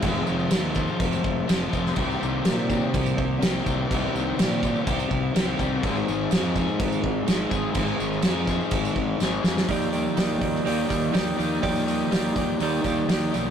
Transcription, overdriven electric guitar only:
\new Staff \with { instrumentName = "Overdriven electric guitar" } { \time 4/4 \key ees \major \tempo 4 = 124 <f, c f aes c' f'>8 <f aes c' f'>8 <f aes c' f'>8 <f aes c' f'>4. <f aes c' f'>8 <f aes c' f'>8 | <c ees g c' g'>8 <g c' g'>8 <ees g c' g'>8 <g c' g'>4. <ees g c' g'>8 <g c' g'>8 | <c ees g c' g'>8 <g c' g'>8 <ees g c' g'>8 <g c' g'>4. <ees g c' g'>8 <g c' g'>8 | <aes, ees aes c' ees' aes'>8 <aes c' ees' aes'>8 <aes c' ees' aes'>8 <aes c' ees' aes'>4. <aes c' ees' aes'>8 <aes c' ees' aes'>8 |
<aes, ees aes c' ees' aes'>8 <aes c' ees' aes'>8 <aes c' ees' aes'>8 <aes c' ees' aes'>4. <aes c' ees' aes'>8 <aes c' ees' aes'>8 | <ees g bes ees' g'>8 <bes ees' g'>8 <g bes ees' g'>4 <ees g bes ees' g'>8 <bes ees' g'>8 <g bes ees' g'>8 <bes ees' g'>8 | <ees g bes ees' g'>8 <bes ees' g'>8 <g bes ees' g'>4 <ees g bes ees' g'>8 <bes ees' g'>8 <g bes ees' g'>8 <bes ees' g'>8 | }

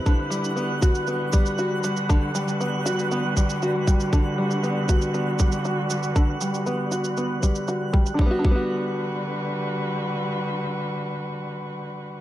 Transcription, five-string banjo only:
\new Staff \with { instrumentName = "Five-string banjo" } { \time 4/4 \key g \major \tempo 4 = 118 d8 g8 b8 fis'8 b8 g8 fis'8 g8 | d8 g8 b8 fis'8 b8 g8 fis'8 g8 | d8 g8 b8 fis'8 b8 g8 fis'8 g8 | d8 g8 b8 fis'8 b8 g8 fis'8 g8 |
<d g b fis'>8 <d g b fis'>2.~ <d g b fis'>8~ | <d g b fis'>1 | }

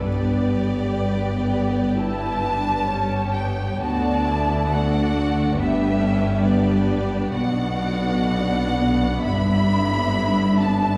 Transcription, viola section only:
\new Staff \with { instrumentName = "Viola section" } { \time 4/4 \key g \lydian \tempo 4 = 67 << { d'8 g'4. e'2 | d'4 d'4 d'4 b4 | \key b \minor d'1 | } \\ { b4 b4 e'8 d'8 cis'8 b8 | b4 a8 a8 b8 cis'8 d'4 | b1 | } >> }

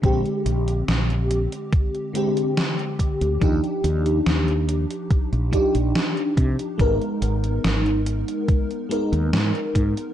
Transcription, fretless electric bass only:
\new Staff \with { instrumentName = "Fretless electric bass" } { \clef bass \time 4/4 \key ees \major \tempo 4 = 71 bes,,16 r16 bes,,8 bes,,8. r2 d,16 | ees,16 r16 ees,8 ees,8. r8 bes,,16 r16 bes,,16 r8 c16 r16 | aes,,16 r16 aes,,8 aes,,8. r4 ees,16 aes,16 r16 aes,16 r16 | }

